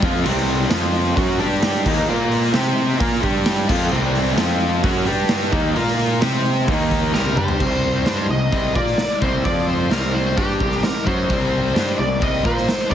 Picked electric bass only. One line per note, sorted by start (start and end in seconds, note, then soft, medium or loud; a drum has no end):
0.02 0.24 F2 medium
0.26 0.68 C2 medium
0.70 1.13 F2 medium
1.17 1.38 F#2 medium
1.40 1.82 G2 medium
1.86 2.07 D#2 medium
2.08 2.51 A#2 medium
2.54 2.97 C3 medium
3.00 3.21 A#2 loud
3.23 3.66 G2 medium
3.70 3.91 F2 medium
3.91 4.34 C2 medium
4.37 4.80 F2 medium
4.84 5.05 F#2 medium
5.07 5.50 G2 medium
5.53 5.74 D#2 medium
5.77 6.20 A#2 medium
6.23 6.65 C3 medium
6.69 7.11 D#2 medium
7.15 7.36 C2 loud
7.36 7.58 G2 medium
7.60 8.03 C2 medium
8.06 8.28 G2 medium
8.28 8.50 C2 medium
8.52 8.74 C2 medium
8.75 8.97 A#2 medium
8.99 muted picked electric bass stroke soft
9.22 9.44 C2 medium
9.45 9.88 F2 medium
9.91 10.34 C2 medium
10.37 10.59 G2 medium
10.60 10.82 C2 medium
10.83 muted picked electric bass stroke soft
11.07 11.28 F#2 medium
11.30 11.72 C2 medium
11.76 11.97 G2 medium
11.99 12.20 C2 medium
12.22 12.43 C2 medium
12.45 12.66 A#2 medium
12.68 muted picked electric bass stroke soft